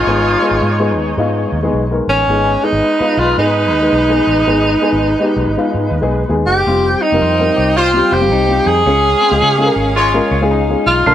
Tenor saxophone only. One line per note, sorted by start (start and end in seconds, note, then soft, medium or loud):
0.00 0.97 F4 medium
2.09 2.66 C#4 medium
2.64 3.21 D#4 medium
3.19 3.38 F4 medium
3.38 6.09 D#4 medium
6.47 7.03 G4 loud
7.02 7.79 D#4 medium
7.77 8.15 F4 medium
8.13 8.69 G4 loud
8.68 10.32 G#4 loud
10.87 11.14 F4 medium